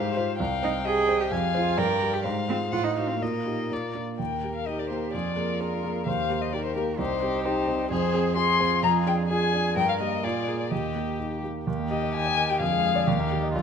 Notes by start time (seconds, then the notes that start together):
Already playing: G#2 G4 C5 F5
0.16 F4 C5
0.39 C2 F5 G5
0.63 C4 D#4
0.85 G4 G#4 D#5
1.09 C5
1.20 G4
1.31 F2 F5 G#5
1.54 F4 G#4 C5
1.77 G2 A#4 D5 G5
2.02 G4 A#4
2.13 G4
2.24 G#2 C5 F5
2.48 C4 F4 G#4
2.72 A2 F4 F#5
2.84 D#4
2.97 D#4 F#4 F5
3.08 C4
3.20 A#2 A#3 A#4 D#5
3.46 D#4 G4
3.71 A#2 D5
3.95 D4 F4
4.18 D#2 A#4 G5
4.43 A#3 G4
4.55 F5
4.66 D#4 G4 D#5
4.79 D5
4.90 A#3 G4 C5
5.13 F2 F4 G#4 D5
5.37 A#3 G#4 A#4
5.60 D4 G#4 A#4
5.83 A#3 G#4
6.06 D#2 G4 C5 F5
6.30 A#3 G4
6.41 D#5
6.53 D#4 G4 A#4 D5
6.64 C5
6.75 A#3 G4 A#4
6.98 C2 D#4 G4 C5
7.22 C4 G4
7.44 D#4 G4 C5
7.68 C4 G4
7.91 F2 G#4 C5
8.14 C4 G#4
8.36 F4 G#4 C6
8.60 C4 G#4
8.82 F2 G#4 A#5
9.06 D4 G#4 G5
9.29 F4 G#4 G#5
9.53 D4 G#4
9.76 G2 A#4 G5
9.89 F5
10.00 A#3 G4 D#5
10.23 A#2 F4 G#4 D5
10.48 A#3 G#4
10.60 D5
10.71 D#2 G4 D#5
10.95 A#3 G4
11.19 D#4 G4
11.43 A#3 G4
11.67 D#2 D#3 G4
11.79 A#3
11.91 G4 D#5
12.03 D#5
12.14 G5 G#5
12.26 D#5
12.37 A#4
12.49 G4 G5
12.60 F2 D3 G#4 F5
12.72 G#3
12.84 G#4
12.96 D5
13.06 D#2 D#3 G4
13.20 A#3
13.31 G4
13.43 D#5
13.53 A#1 D3 F4